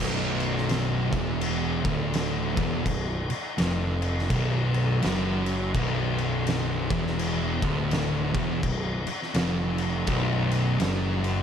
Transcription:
Already playing: picked electric bass B0, distorted electric guitar B1
0.40 crash
0.57 snare
0.69 snare, crash
1.11 picked electric bass E1, distorted electric guitar E2, kick, crash
1.41 crash
1.84 picked electric bass D1, distorted electric guitar D2, kick, crash
2.14 snare, crash
2.56 picked electric bass E1, distorted electric guitar E2, kick, crash
2.86 picked electric bass B0, distorted electric guitar B1, kick, crash
3.30 muted distorted electric guitar stroke, muted picked electric bass stroke, crash
3.58 picked electric bass F1, distorted electric guitar F2, snare, crash
4.02 crash
4.19 snare
4.30 picked electric bass B0, distorted electric guitar B1, kick, crash
4.74 crash
5.02 picked electric bass F#1, distorted electric guitar F#2, snare, crash
5.46 crash
5.74 picked electric bass B0, distorted electric guitar B1, kick, crash
6.18 crash
6.47 snare, crash
6.90 picked electric bass E1, distorted electric guitar E2, kick, crash
7.07 snare
7.19 crash
7.62 picked electric bass D1, distorted electric guitar D2, kick, crash
7.91 snare, crash
8.34 picked electric bass E1, distorted electric guitar E2, kick, crash
8.63 picked electric bass B0, distorted electric guitar B1, kick, crash
9.07 muted distorted electric guitar stroke, muted picked electric bass stroke, crash
9.22 snare
9.34 picked electric bass F1, distorted electric guitar F2, snare, crash
9.78 crash
10.06 picked electric bass B0, distorted electric guitar B1, kick, crash
10.51 crash
10.79 picked electric bass F#1, distorted electric guitar F#2, snare, crash
11.24 crash

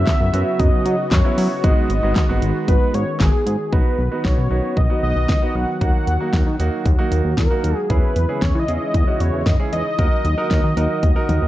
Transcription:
Already playing: analog synth pad C#3 F#3 B3 F#4, analog synth lead E5
0.07 kick, snare, clap, closed hi-hat
0.20 analog synth bass F#2
0.33 analog synth bass F#2, grand piano F#3 B3 C#4 F#4, closed hi-hat
0.59 analog synth bass F#2, analog synth lead D#5, kick, closed hi-hat
0.86 analog synth bass F#3, closed hi-hat
1.11 analog synth bass F#2, analog synth lead C#5, kick, snare, clap, closed hi-hat
1.25 grand piano F#3 B3 C#4 E4
1.38 analog synth bass F#3, open hi-hat
1.64 analog synth bass G#1, analog synth pad D#3 G#3, grand piano G#3 B3 D#4 F#4, analog synth lead D#5, kick, closed hi-hat
1.90 analog synth bass G#1, analog synth lead D#5, closed hi-hat
2.03 analog synth bass G#1, grand piano G#3 B3 D#4 F#4
2.16 kick, snare, clap, closed hi-hat
2.29 analog synth bass G#1, grand piano G#3 B3 D#4 F#4
2.42 analog synth bass G#1, closed hi-hat
2.68 analog synth bass G#1, analog synth lead B4, kick, closed hi-hat
2.94 analog synth bass G#2, analog synth lead C#5, closed hi-hat
3.20 analog synth bass G#1, analog synth lead G#4, kick, snare, clap, closed hi-hat
3.47 analog synth bass G#2, closed hi-hat
3.72 analog synth bass B1, analog synth pad D#3 F#3 B3 F#4, grand piano B3 D#4 F#4, analog synth lead B4, kick
3.99 analog synth bass B1
4.12 grand piano B3 D#4 F#4
4.25 analog synth bass B1, analog synth lead C#5, kick, snare
4.38 analog synth bass B2
4.51 analog synth bass B1, grand piano B3 D#4 F#4
4.77 analog synth bass B1, analog synth lead D#5, kick
4.90 grand piano B3 D#4 F#4
5.03 analog synth bass B1, analog synth lead D#5
5.16 analog synth bass B1
5.29 analog synth bass C#2, kick, snare
5.42 grand piano B3 D#4 F#4
5.55 analog synth bass B1, analog synth lead F#5
5.81 analog synth bass D#2, grand piano A#3 D#4 F#4, analog synth pad A#3, analog synth lead F#5, kick, closed hi-hat
6.07 analog synth bass D#2, closed hi-hat
6.20 grand piano A#3 D#4 F#4
6.33 analog synth bass D#2, kick, snare, closed hi-hat
6.46 analog synth bass D#3
6.59 analog synth bass D#2, grand piano A#3 D#4 F#4, closed hi-hat
6.86 analog synth bass D#2, kick, closed hi-hat
6.99 grand piano A#3 D#4 F#4
7.12 analog synth bass D#2, closed hi-hat
7.25 analog synth bass D#2
7.38 analog synth bass E2, analog synth lead A#4, kick, snare, closed hi-hat
7.51 grand piano A#3 D#4 F#4
7.64 analog synth bass D#2, closed hi-hat
7.77 analog synth lead G#4
7.90 analog synth bass E2, analog synth pad C#3 E3 G#3 E4, grand piano C#4 E4 G#4, analog synth lead B4, kick, closed hi-hat
8.16 analog synth bass E2, closed hi-hat
8.29 grand piano C#4 E4 G#4
8.42 analog synth bass E2, analog synth lead C#5, kick, snare, closed hi-hat
8.55 analog synth bass E3
8.59 analog synth lead D#5
8.68 analog synth bass E2, grand piano C#4 E4 G#4, closed hi-hat
8.77 analog synth lead D#5
8.94 analog synth bass E2, kick, closed hi-hat
9.07 grand piano C#4 E4 F#4
9.20 analog synth bass E2, analog synth lead C#5, closed hi-hat
9.33 analog synth bass E2
9.46 analog synth bass F#2, analog synth lead D#5, kick, snare, closed hi-hat
9.60 grand piano C#4 E4 G#4
9.73 analog synth bass E2, analog synth lead D#5, closed hi-hat
9.99 analog synth bass D#2, analog synth pad D#3 F#3 A#3 F#4, grand piano D#4 F#4 A#4, kick, closed hi-hat
10.25 analog synth bass D#2, closed hi-hat
10.38 grand piano D#4 F#4 A#4
10.51 analog synth bass D#2, kick, snare, closed hi-hat
10.64 analog synth bass D#3
10.77 analog synth bass D#2, grand piano D#4 F#4 A#4, closed hi-hat
11.03 analog synth bass D#2, kick, closed hi-hat, high tom
11.16 grand piano D#4 F#4 A#4
11.29 analog synth bass D#2, closed hi-hat, mid tom
11.42 analog synth bass D#2

